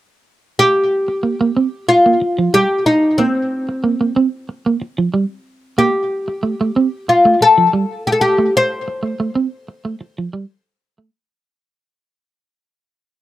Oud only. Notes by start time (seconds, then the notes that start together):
0.59 G4
1.89 F4
2.54 G4
2.86 D#4
3.18 C4
5.78 G4
7.09 F4
7.42 A4
8.07 G4
8.12 A4
8.21 G4
8.57 C5